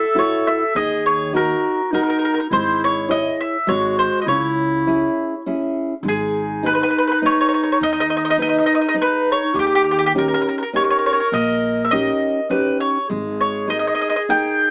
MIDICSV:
0, 0, Header, 1, 5, 480
1, 0, Start_track
1, 0, Key_signature, 4, "minor"
1, 0, Tempo, 587659
1, 614, Time_signature, 3, 2, 24, 8
1, 4930, Key_signature, 5, "minor"
1, 12012, End_track
2, 0, Start_track
2, 0, Title_t, "Mandolin"
2, 0, Program_c, 0, 25
2, 0, Note_on_c, 0, 76, 74
2, 126, Note_off_c, 0, 76, 0
2, 153, Note_on_c, 0, 73, 71
2, 377, Note_off_c, 0, 73, 0
2, 385, Note_on_c, 0, 76, 77
2, 598, Note_off_c, 0, 76, 0
2, 622, Note_on_c, 0, 75, 88
2, 862, Note_off_c, 0, 75, 0
2, 865, Note_on_c, 0, 73, 80
2, 1078, Note_off_c, 0, 73, 0
2, 1115, Note_on_c, 0, 70, 78
2, 1549, Note_off_c, 0, 70, 0
2, 1589, Note_on_c, 0, 70, 68
2, 1640, Note_off_c, 0, 70, 0
2, 1658, Note_on_c, 0, 70, 50
2, 1702, Note_off_c, 0, 70, 0
2, 1712, Note_on_c, 0, 70, 64
2, 1766, Note_off_c, 0, 70, 0
2, 1788, Note_on_c, 0, 70, 57
2, 1827, Note_off_c, 0, 70, 0
2, 1837, Note_on_c, 0, 70, 64
2, 1887, Note_off_c, 0, 70, 0
2, 1913, Note_on_c, 0, 70, 59
2, 1948, Note_off_c, 0, 70, 0
2, 1958, Note_on_c, 0, 70, 53
2, 2006, Note_off_c, 0, 70, 0
2, 2065, Note_on_c, 0, 72, 72
2, 2289, Note_off_c, 0, 72, 0
2, 2321, Note_on_c, 0, 73, 88
2, 2523, Note_off_c, 0, 73, 0
2, 2538, Note_on_c, 0, 75, 89
2, 2765, Note_off_c, 0, 75, 0
2, 2782, Note_on_c, 0, 76, 73
2, 3011, Note_on_c, 0, 73, 66
2, 3014, Note_off_c, 0, 76, 0
2, 3240, Note_off_c, 0, 73, 0
2, 3257, Note_on_c, 0, 72, 80
2, 3435, Note_off_c, 0, 72, 0
2, 3443, Note_on_c, 0, 75, 53
2, 3491, Note_off_c, 0, 75, 0
2, 3497, Note_on_c, 0, 73, 69
2, 4420, Note_off_c, 0, 73, 0
2, 4969, Note_on_c, 0, 68, 74
2, 5442, Note_on_c, 0, 71, 79
2, 5446, Note_off_c, 0, 68, 0
2, 5489, Note_off_c, 0, 71, 0
2, 5512, Note_on_c, 0, 71, 65
2, 5556, Note_off_c, 0, 71, 0
2, 5580, Note_on_c, 0, 71, 78
2, 5623, Note_off_c, 0, 71, 0
2, 5639, Note_on_c, 0, 71, 63
2, 5684, Note_off_c, 0, 71, 0
2, 5704, Note_on_c, 0, 71, 65
2, 5744, Note_off_c, 0, 71, 0
2, 5778, Note_on_c, 0, 71, 59
2, 5803, Note_off_c, 0, 71, 0
2, 5813, Note_on_c, 0, 71, 68
2, 5857, Note_off_c, 0, 71, 0
2, 5928, Note_on_c, 0, 73, 85
2, 5961, Note_off_c, 0, 73, 0
2, 5970, Note_on_c, 0, 73, 57
2, 6025, Note_off_c, 0, 73, 0
2, 6049, Note_on_c, 0, 73, 70
2, 6097, Note_off_c, 0, 73, 0
2, 6113, Note_on_c, 0, 73, 64
2, 6151, Note_off_c, 0, 73, 0
2, 6160, Note_on_c, 0, 73, 64
2, 6211, Note_off_c, 0, 73, 0
2, 6236, Note_on_c, 0, 73, 59
2, 6279, Note_off_c, 0, 73, 0
2, 6307, Note_on_c, 0, 73, 66
2, 6344, Note_off_c, 0, 73, 0
2, 6397, Note_on_c, 0, 75, 93
2, 6451, Note_off_c, 0, 75, 0
2, 6475, Note_on_c, 0, 75, 69
2, 6522, Note_off_c, 0, 75, 0
2, 6538, Note_on_c, 0, 75, 95
2, 6585, Note_off_c, 0, 75, 0
2, 6616, Note_on_c, 0, 75, 74
2, 6655, Note_off_c, 0, 75, 0
2, 6672, Note_on_c, 0, 75, 75
2, 6711, Note_off_c, 0, 75, 0
2, 6737, Note_on_c, 0, 75, 72
2, 6772, Note_off_c, 0, 75, 0
2, 6782, Note_on_c, 0, 75, 87
2, 6825, Note_off_c, 0, 75, 0
2, 6879, Note_on_c, 0, 75, 83
2, 6925, Note_off_c, 0, 75, 0
2, 6935, Note_on_c, 0, 75, 68
2, 6991, Note_off_c, 0, 75, 0
2, 7011, Note_on_c, 0, 75, 74
2, 7061, Note_off_c, 0, 75, 0
2, 7074, Note_on_c, 0, 75, 74
2, 7124, Note_off_c, 0, 75, 0
2, 7145, Note_on_c, 0, 75, 76
2, 7187, Note_off_c, 0, 75, 0
2, 7198, Note_on_c, 0, 75, 55
2, 7243, Note_off_c, 0, 75, 0
2, 7258, Note_on_c, 0, 75, 83
2, 7302, Note_off_c, 0, 75, 0
2, 7365, Note_on_c, 0, 71, 90
2, 7605, Note_off_c, 0, 71, 0
2, 7612, Note_on_c, 0, 73, 78
2, 7810, Note_off_c, 0, 73, 0
2, 7834, Note_on_c, 0, 67, 75
2, 7887, Note_off_c, 0, 67, 0
2, 7896, Note_on_c, 0, 67, 51
2, 7950, Note_off_c, 0, 67, 0
2, 7965, Note_on_c, 0, 67, 82
2, 8017, Note_off_c, 0, 67, 0
2, 8037, Note_on_c, 0, 67, 58
2, 8084, Note_off_c, 0, 67, 0
2, 8097, Note_on_c, 0, 67, 72
2, 8141, Note_off_c, 0, 67, 0
2, 8157, Note_on_c, 0, 67, 63
2, 8200, Note_off_c, 0, 67, 0
2, 8219, Note_on_c, 0, 67, 76
2, 8261, Note_off_c, 0, 67, 0
2, 8317, Note_on_c, 0, 70, 87
2, 8363, Note_off_c, 0, 70, 0
2, 8398, Note_on_c, 0, 70, 58
2, 8436, Note_off_c, 0, 70, 0
2, 8448, Note_on_c, 0, 70, 81
2, 8493, Note_off_c, 0, 70, 0
2, 8508, Note_on_c, 0, 70, 65
2, 8554, Note_off_c, 0, 70, 0
2, 8565, Note_on_c, 0, 70, 61
2, 8610, Note_off_c, 0, 70, 0
2, 8641, Note_on_c, 0, 70, 59
2, 8670, Note_off_c, 0, 70, 0
2, 8679, Note_on_c, 0, 70, 66
2, 8726, Note_off_c, 0, 70, 0
2, 8788, Note_on_c, 0, 73, 89
2, 8838, Note_off_c, 0, 73, 0
2, 8907, Note_on_c, 0, 73, 74
2, 8962, Note_off_c, 0, 73, 0
2, 8974, Note_on_c, 0, 73, 54
2, 9027, Note_off_c, 0, 73, 0
2, 9036, Note_on_c, 0, 73, 70
2, 9079, Note_off_c, 0, 73, 0
2, 9089, Note_on_c, 0, 73, 66
2, 9141, Note_off_c, 0, 73, 0
2, 9150, Note_on_c, 0, 73, 63
2, 9201, Note_off_c, 0, 73, 0
2, 9259, Note_on_c, 0, 75, 98
2, 9649, Note_off_c, 0, 75, 0
2, 9676, Note_on_c, 0, 76, 67
2, 9729, Note_off_c, 0, 76, 0
2, 9730, Note_on_c, 0, 75, 92
2, 10212, Note_off_c, 0, 75, 0
2, 10215, Note_on_c, 0, 71, 61
2, 10445, Note_off_c, 0, 71, 0
2, 10458, Note_on_c, 0, 73, 74
2, 10673, Note_off_c, 0, 73, 0
2, 10950, Note_on_c, 0, 73, 81
2, 11183, Note_off_c, 0, 73, 0
2, 11190, Note_on_c, 0, 75, 80
2, 11241, Note_off_c, 0, 75, 0
2, 11266, Note_on_c, 0, 75, 69
2, 11313, Note_off_c, 0, 75, 0
2, 11332, Note_on_c, 0, 75, 77
2, 11378, Note_off_c, 0, 75, 0
2, 11392, Note_on_c, 0, 75, 71
2, 11436, Note_off_c, 0, 75, 0
2, 11446, Note_on_c, 0, 75, 68
2, 11493, Note_off_c, 0, 75, 0
2, 11513, Note_on_c, 0, 75, 64
2, 11556, Note_off_c, 0, 75, 0
2, 11568, Note_on_c, 0, 75, 70
2, 11613, Note_off_c, 0, 75, 0
2, 11680, Note_on_c, 0, 79, 92
2, 12012, Note_off_c, 0, 79, 0
2, 12012, End_track
3, 0, Start_track
3, 0, Title_t, "Clarinet"
3, 0, Program_c, 1, 71
3, 0, Note_on_c, 1, 69, 110
3, 588, Note_off_c, 1, 69, 0
3, 614, Note_on_c, 1, 68, 100
3, 1093, Note_on_c, 1, 66, 83
3, 1106, Note_off_c, 1, 68, 0
3, 1561, Note_on_c, 1, 63, 86
3, 1573, Note_off_c, 1, 66, 0
3, 2033, Note_off_c, 1, 63, 0
3, 2038, Note_on_c, 1, 64, 92
3, 2755, Note_off_c, 1, 64, 0
3, 3005, Note_on_c, 1, 66, 88
3, 3452, Note_off_c, 1, 66, 0
3, 3475, Note_on_c, 1, 64, 112
3, 4662, Note_off_c, 1, 64, 0
3, 4900, Note_on_c, 1, 63, 102
3, 7793, Note_on_c, 1, 67, 123
3, 7805, Note_off_c, 1, 63, 0
3, 8546, Note_off_c, 1, 67, 0
3, 8759, Note_on_c, 1, 70, 114
3, 10423, Note_off_c, 1, 70, 0
3, 10682, Note_on_c, 1, 68, 95
3, 12012, Note_off_c, 1, 68, 0
3, 12012, End_track
4, 0, Start_track
4, 0, Title_t, "Nylon-string guitar"
4, 0, Program_c, 2, 24
4, 120, Note_on_c, 2, 66, 47
4, 125, Note_on_c, 2, 64, 51
4, 128, Note_on_c, 2, 69, 55
4, 510, Note_off_c, 2, 66, 0
4, 512, Note_off_c, 2, 64, 0
4, 514, Note_off_c, 2, 69, 0
4, 625, Note_on_c, 2, 51, 62
4, 1085, Note_off_c, 2, 51, 0
4, 1087, Note_on_c, 2, 63, 49
4, 1091, Note_on_c, 2, 66, 42
4, 1097, Note_on_c, 2, 70, 49
4, 1472, Note_off_c, 2, 63, 0
4, 1474, Note_off_c, 2, 66, 0
4, 1478, Note_off_c, 2, 70, 0
4, 1573, Note_on_c, 2, 63, 56
4, 1576, Note_on_c, 2, 66, 44
4, 1581, Note_on_c, 2, 70, 53
4, 1954, Note_off_c, 2, 63, 0
4, 1956, Note_off_c, 2, 66, 0
4, 1958, Note_off_c, 2, 70, 0
4, 2054, Note_on_c, 2, 56, 62
4, 2515, Note_off_c, 2, 56, 0
4, 2519, Note_on_c, 2, 64, 45
4, 2521, Note_on_c, 2, 68, 46
4, 2527, Note_on_c, 2, 73, 56
4, 2904, Note_off_c, 2, 64, 0
4, 2905, Note_off_c, 2, 68, 0
4, 2909, Note_off_c, 2, 73, 0
4, 2997, Note_on_c, 2, 56, 68
4, 3466, Note_off_c, 2, 56, 0
4, 3493, Note_on_c, 2, 49, 66
4, 3955, Note_off_c, 2, 49, 0
4, 3975, Note_on_c, 2, 61, 44
4, 3980, Note_on_c, 2, 64, 42
4, 3984, Note_on_c, 2, 68, 53
4, 4356, Note_off_c, 2, 61, 0
4, 4359, Note_off_c, 2, 64, 0
4, 4362, Note_off_c, 2, 68, 0
4, 4461, Note_on_c, 2, 61, 45
4, 4465, Note_on_c, 2, 68, 52
4, 4470, Note_on_c, 2, 64, 47
4, 4843, Note_off_c, 2, 61, 0
4, 4844, Note_off_c, 2, 68, 0
4, 4848, Note_off_c, 2, 64, 0
4, 4938, Note_on_c, 2, 56, 58
4, 5402, Note_off_c, 2, 56, 0
4, 5414, Note_on_c, 2, 63, 47
4, 5417, Note_on_c, 2, 68, 41
4, 5425, Note_on_c, 2, 71, 52
4, 5798, Note_off_c, 2, 63, 0
4, 5800, Note_off_c, 2, 68, 0
4, 5805, Note_off_c, 2, 71, 0
4, 5896, Note_on_c, 2, 63, 53
4, 5900, Note_on_c, 2, 68, 47
4, 5903, Note_on_c, 2, 71, 60
4, 6278, Note_off_c, 2, 63, 0
4, 6281, Note_off_c, 2, 71, 0
4, 6282, Note_off_c, 2, 68, 0
4, 6377, Note_on_c, 2, 51, 59
4, 6839, Note_off_c, 2, 51, 0
4, 6843, Note_on_c, 2, 63, 45
4, 6848, Note_on_c, 2, 68, 45
4, 6853, Note_on_c, 2, 71, 56
4, 7229, Note_off_c, 2, 63, 0
4, 7233, Note_off_c, 2, 68, 0
4, 7236, Note_off_c, 2, 71, 0
4, 7304, Note_on_c, 2, 63, 52
4, 7313, Note_on_c, 2, 68, 50
4, 7316, Note_on_c, 2, 71, 60
4, 7697, Note_off_c, 2, 63, 0
4, 7703, Note_off_c, 2, 68, 0
4, 7704, Note_off_c, 2, 71, 0
4, 7792, Note_on_c, 2, 51, 70
4, 8264, Note_off_c, 2, 51, 0
4, 8287, Note_on_c, 2, 63, 46
4, 8291, Note_on_c, 2, 61, 49
4, 8295, Note_on_c, 2, 67, 50
4, 8671, Note_off_c, 2, 63, 0
4, 8673, Note_off_c, 2, 61, 0
4, 8676, Note_off_c, 2, 67, 0
4, 8766, Note_on_c, 2, 61, 53
4, 8773, Note_on_c, 2, 63, 49
4, 8773, Note_on_c, 2, 67, 60
4, 9151, Note_off_c, 2, 61, 0
4, 9153, Note_off_c, 2, 67, 0
4, 9155, Note_off_c, 2, 63, 0
4, 9254, Note_on_c, 2, 58, 64
4, 9717, Note_off_c, 2, 58, 0
4, 9739, Note_on_c, 2, 61, 48
4, 9739, Note_on_c, 2, 63, 45
4, 9743, Note_on_c, 2, 67, 48
4, 10119, Note_off_c, 2, 61, 0
4, 10119, Note_off_c, 2, 63, 0
4, 10120, Note_off_c, 2, 67, 0
4, 10207, Note_on_c, 2, 61, 54
4, 10212, Note_on_c, 2, 63, 48
4, 10216, Note_on_c, 2, 67, 56
4, 10593, Note_off_c, 2, 61, 0
4, 10596, Note_off_c, 2, 63, 0
4, 10598, Note_off_c, 2, 67, 0
4, 10696, Note_on_c, 2, 56, 60
4, 11160, Note_off_c, 2, 56, 0
4, 11166, Note_on_c, 2, 68, 48
4, 11170, Note_on_c, 2, 63, 45
4, 11174, Note_on_c, 2, 70, 50
4, 11551, Note_off_c, 2, 68, 0
4, 11554, Note_off_c, 2, 63, 0
4, 11556, Note_off_c, 2, 70, 0
4, 11669, Note_on_c, 2, 63, 52
4, 11676, Note_on_c, 2, 70, 55
4, 11679, Note_on_c, 2, 68, 44
4, 12012, Note_off_c, 2, 63, 0
4, 12012, Note_off_c, 2, 68, 0
4, 12012, Note_off_c, 2, 70, 0
4, 12012, End_track
5, 0, Start_track
5, 0, Title_t, "Upright bass"
5, 0, Program_c, 3, 32
5, 613, Note_on_c, 3, 39, 88
5, 1235, Note_off_c, 3, 39, 0
5, 2046, Note_on_c, 3, 32, 75
5, 2668, Note_off_c, 3, 32, 0
5, 3012, Note_on_c, 3, 32, 80
5, 3322, Note_off_c, 3, 32, 0
5, 3485, Note_on_c, 3, 37, 92
5, 4110, Note_off_c, 3, 37, 0
5, 4924, Note_on_c, 3, 32, 85
5, 5552, Note_off_c, 3, 32, 0
5, 6377, Note_on_c, 3, 39, 79
5, 6998, Note_off_c, 3, 39, 0
5, 7801, Note_on_c, 3, 39, 85
5, 8426, Note_off_c, 3, 39, 0
5, 9246, Note_on_c, 3, 34, 86
5, 9871, Note_off_c, 3, 34, 0
5, 10702, Note_on_c, 3, 32, 83
5, 11323, Note_off_c, 3, 32, 0
5, 12012, End_track
0, 0, End_of_file